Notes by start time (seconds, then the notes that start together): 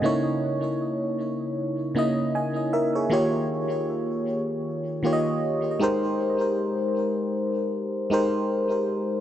0.02 C#3 A#3 D#4 E4 C#5
1.94 C#3 A#3 D#4 E4 D#5
2.35 D#5 G#5
2.73 A#4 E5
2.95 G#4 C#5
3.10 D#3 A#3 F4 G4 C#5
5.03 D#3 A#3 F4 G4 C#5
5.13 D#5
5.79 G#3 D#4 G4 A#4 C5
8.10 G#3 D#4 G4 A#4 C5